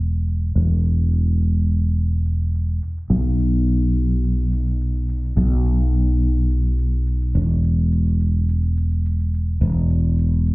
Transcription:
Already playing: E1
0.14 shaker
0.28 shaker
0.42 shaker
0.55 E1, shaker
0.70 shaker
0.84 shaker
0.99 shaker
1.12 shaker
1.27 shaker
1.41 shaker
1.55 shaker
1.69 shaker
1.84 shaker
1.98 shaker
2.12 shaker
2.26 shaker
2.40 shaker
2.54 shaker
2.68 shaker
2.83 shaker
2.97 shaker
3.10 B1, shaker
3.25 shaker
3.39 shaker
3.54 shaker
3.68 shaker
3.82 shaker
3.96 shaker
4.10 shaker
4.24 shaker
4.39 shaker
4.52 shaker
4.67 shaker
4.81 shaker
4.95 shaker
5.09 shaker
5.24 shaker
5.37 B1, shaker
5.52 shaker
5.66 shaker
5.80 shaker
5.94 shaker
6.08 shaker
6.22 shaker
6.37 shaker
6.51 shaker
6.65 shaker
6.79 shaker
6.93 shaker
7.07 shaker
7.22 shaker
7.35 E1, shaker
7.49 shaker
7.64 shaker
7.78 shaker
7.92 shaker
8.07 shaker
8.20 shaker
8.35 shaker
8.48 shaker
8.63 shaker
8.77 shaker
8.91 shaker
9.05 shaker
9.20 shaker
9.34 shaker
9.48 shaker
9.61 E1, shaker
9.77 shaker
9.90 shaker
10.04 shaker
10.18 shaker
10.33 shaker
10.47 shaker

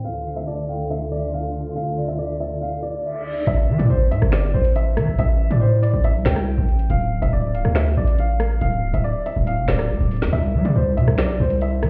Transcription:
0.04 D2 D3 F4 A4 F5
0.25 F5
0.36 E5
0.47 D5 A5
0.68 F5 G5
0.90 E5 F5
1.11 D5 E5
1.33 F5
1.76 F5
1.97 D5
2.08 E5
2.18 D5 E5
2.40 D5 E5
2.61 F5, reverse cymbal
2.83 D5
3.04 E5
3.26 D5
3.47 A1 E5, closed hi-hat
3.68 E3
3.78 A2 D5, closed hi-hat
3.90 A1 C5
4.11 A2 E5, closed hi-hat
4.22 G1, cross-stick
4.32 D5, finger snap, snare, closed hi-hat
4.54 A1 C5
4.65 closed hi-hat
4.76 E5, closed hi-hat
4.97 E3, cross-stick, closed hi-hat
5.08 A1
5.18 A1 E5, closed hi-hat
5.51 A2 D5, closed hi-hat
5.61 C5
5.83 D5, closed hi-hat
5.93 A1
6.04 E5, closed hi-hat
6.15 C2
6.25 C2 G5, finger snap, snare
6.36 cross-stick, closed hi-hat
6.58 A1
6.68 closed hi-hat
6.79 closed hi-hat
6.90 D1 F5, closed hi-hat
7.22 D1 E5, closed hi-hat
7.33 D1 D5
7.54 C1 F5, closed hi-hat
7.65 D2, cross-stick
7.75 E5, finger snap, snare, closed hi-hat
7.97 A1 D5
8.07 closed hi-hat
8.19 F5, closed hi-hat
8.40 cross-stick, closed hi-hat
8.61 D1 F5, closed hi-hat
8.83 C1
8.93 D1 E5, closed hi-hat
9.04 D5
9.26 E5, closed hi-hat
9.36 D1
9.47 F5, closed hi-hat
9.58 F1
9.68 D1 D5, finger snap, snare
9.79 cross-stick, closed hi-hat
9.90 D2
10.01 D1
10.11 closed hi-hat, open hi-hat
10.17 closed hi-hat
10.22 F2, snare, closed hi-hat
10.27 closed hi-hat
10.33 C2 E5, closed hi-hat
10.54 G3
10.65 C3 D5, closed hi-hat
10.76 C2 C5
10.97 C3 E5, closed hi-hat
11.08 B1, cross-stick
11.18 D5, finger snap, snare, closed hi-hat
11.40 C2 C5
11.50 closed hi-hat
11.61 E5, closed hi-hat
11.83 G3, cross-stick, closed hi-hat

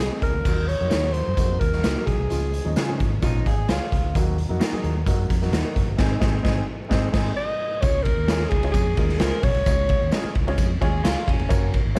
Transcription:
Already playing: G#3
0.00 C4 D#4 G#4
0.10 G#3 C4 D#4 G#4
0.22 C#2 A#4, kick, closed hi-hat
0.34 D2
0.45 D#2 F#3 A#3 D#4 F#4, kick, crash, tambourine
0.68 C#5, closed hi-hat
0.80 F2 F#3 A#3 D#4 F#4
0.90 D#2 A#3 D#4 F#4 A#4, snare, closed hi-hat, tambourine
1.02 F#3 A#3 D#4 F#4, snare
1.13 C5, closed hi-hat
1.28 F#2
1.37 F2 F#3 A#3 D#4 F#4, kick, closed hi-hat, tambourine
1.60 D#2 A#4, kick, closed hi-hat
1.72 F#3 A#3 D#4 F#4, snare
1.83 C#2 A#3 D#4 F#4 A#4, snare, closed hi-hat, tambourine
1.95 F#3 A#3 D#4 F#4
2.06 B1 G#4, kick, closed hi-hat
2.18 C2
2.30 C#2 F3 G#3 C#4 F4, closed hi-hat, tambourine
2.54 closed hi-hat
2.64 D#2 F3 G#3 C#4 D#4
2.76 C#3 G#3 C#4 F4 G#4, snare, closed hi-hat, tambourine
2.88 F3 G#3 C#4 D#4
3.00 G#1, kick, closed hi-hat
3.22 A#1 F3 G#3 C#4 D#4 F4, kick, closed hi-hat, tambourine
3.46 G#4 F5, kick, closed hi-hat
3.68 C#2 G#3 C#4 F4 G#4 C#5, snare, closed hi-hat, tambourine
3.92 C#2 G#4, kick, closed hi-hat
4.04 D2
4.15 D#2 F#3 A#3 D#4 F#4, kick, closed hi-hat, tambourine
4.38 closed hi-hat
4.49 F2 F#3 A#3 D#4 F#4
4.60 A#3 D#4 F#4 A#4, snare, closed hi-hat, tambourine
4.72 F#3 A#3 D#4 G#4, muted fingered electric bass stroke, snare
4.84 D#2, closed hi-hat
5.06 F#2 F#3 A#3 D#4 F#4, kick, closed hi-hat, tambourine
5.30 F2, kick, closed hi-hat
5.42 F#3 A#3 D#4 F#4, snare
5.52 D#2 A#3 D#4 F#4 A#4, snare, closed hi-hat, tambourine
5.64 F#3 A#3 D#4 F#4
5.76 F#1, kick, closed hi-hat
5.86 G1
5.97 G#1 G#3 C4 D#4 G#4, kick, snare, crash
6.20 G#1 G#3 C4 D#4, kick, snare
6.24 G#4
6.43 G#1 G#3 C4 D#4, kick, snare
6.47 G#4
6.89 G#1 G#3 C4 D#4, kick, snare
6.93 G#4
7.12 G#1 G#3 C4 D#4 G#4, kick, snare, crash
7.37 D#5
7.81 C#2 G#3 C#4 F4 G#4 C#5, kick, ride, tambourine
8.03 A#4, kick, ride
8.17 D#2
8.27 G#3 C#4 F4 G#4 C#5, snare, ride, tambourine
8.40 snare
8.50 C#2 G#4, kick, ride
8.63 G#3 C#4 F4 G#4 C#5, ride
8.72 F2 G#4, kick, ride, tambourine
8.97 D#2 G#3 C#4 F4 G#4 A#4, kick, ride
9.09 snare
9.19 C#2 G#3 C#4 F4 G#4 A#4 C5, snare, ride, tambourine
9.43 B1 C#5, kick, open hi-hat, ride
9.54 C2, ride
9.66 C#2 G#3 C#4 F4 G#4 C#5, kick, hi-hat pedal, ride, tambourine
9.89 kick, ride
10.01 D#2
10.11 G#3 C#4 F4 G#4 D#5, snare, ride, tambourine
10.24 muted fingered electric bass stroke, snare
10.35 C#2, kick, ride
10.47 G#3 C#4 F4 G#4 C#5, ride
10.58 F2, kick, ride, tambourine
10.81 D#2 G#3 C#4 F4 G#4 C#5, kick, ride
11.03 C#2 G#3 C#4 F4 G#4 C#6, snare, ride, tambourine
11.27 E1 C#4 F5, kick, ride
11.39 F1, ride
11.48 F#1 A#3 C#4 F#4 A#4 C#5, kick, ride, tambourine
11.74 kick, ride
11.85 G#1
11.95 A#3 C#4 F#4 A#4 C#5

